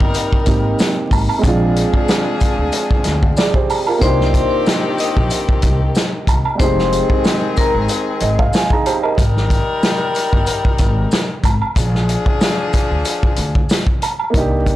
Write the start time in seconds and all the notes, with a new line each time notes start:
Already playing: G3 A#3 C4 D#4 G4 A#4
0.00 G1, kick
0.14 closed hi-hat, maracas
0.33 kick
0.44 G#1 A#3 C4 D#4, kick, closed hi-hat, maracas
0.48 G4
0.79 snare, closed hi-hat, maracas
1.11 G#1, kick, open hi-hat, high woodblock, maracas
1.29 high woodblock
1.39 G#3 C4
1.44 A#1 F3 D4 F4 G#4, kick, closed hi-hat, maracas
1.76 closed hi-hat, maracas
1.94 kick
2.08 snare, closed hi-hat, maracas
2.40 kick, closed hi-hat, maracas
2.58 D2
2.72 closed hi-hat, maracas
2.91 kick
3.04 D2, snare, closed hi-hat, maracas
3.23 kick
3.37 G#4 D5, snare, closed hi-hat, maracas
3.54 G4 C5, kick
3.69 open hi-hat, high woodblock, maracas
3.87 F4 A#4, high woodblock
3.98 D#3 A#3 C4 D4 G4 C5, kick
4.02 C2 D#4 C6, closed hi-hat, maracas
4.06 G4
4.21 snare
4.34 kick, closed hi-hat, maracas
4.66 snare, closed hi-hat, maracas
4.98 D#5 D#6, closed hi-hat, maracas
5.17 A#1, kick
5.30 closed hi-hat, maracas
5.49 kick
5.62 C2, kick, closed hi-hat, maracas
5.95 snare, closed hi-hat, maracas
6.27 C2, kick, closed hi-hat, high woodblock, maracas
6.45 high woodblock
6.55 G3 C4
6.59 F1 D#3 G#3 C4 D#4 G#4 C5 C6, kick, closed hi-hat, maracas
6.64 G4
6.79 snare
6.92 closed hi-hat, maracas
7.10 kick
7.24 snare, closed hi-hat, maracas
7.57 A#4 A#5, kick, closed hi-hat, maracas
7.75 G#1
7.89 closed hi-hat, maracas
8.20 G#1 D#5, closed hi-hat, maracas
8.39 F5, kick
8.53 G#5, snare, closed hi-hat, maracas
8.70 D#4 G#4 A#5, kick
8.86 G4 C5, closed hi-hat, high woodblock, maracas
9.03 A#4 D#5, high woodblock
9.16 G#1 G3 D#4 A#4, kick, closed hi-hat, maracas
9.37 snare
9.50 kick, closed hi-hat, maracas
9.83 snare, closed hi-hat, maracas
10.15 closed hi-hat, maracas
10.33 G1, kick
10.47 closed hi-hat, maracas
10.65 kick
10.78 G#1, kick, closed hi-hat, maracas
11.11 snare, closed hi-hat, maracas
11.44 G#1, kick, closed hi-hat, high woodblock, maracas
11.62 high woodblock
11.76 A#1 F3 D4 G#4, kick, closed hi-hat, maracas
11.95 snare
12.09 closed hi-hat, maracas
12.26 kick
12.41 snare, closed hi-hat, maracas
12.73 kick, closed hi-hat, maracas
12.91 D2
13.05 closed hi-hat, maracas
13.23 kick
13.36 D2, closed hi-hat, maracas
13.55 kick
13.69 snare, closed hi-hat, maracas
13.87 kick
14.02 closed hi-hat, high woodblock, maracas
14.19 high woodblock
14.30 A#3 D4
14.34 C2 D#4, kick, closed hi-hat
14.39 G4
14.66 kick, closed hi-hat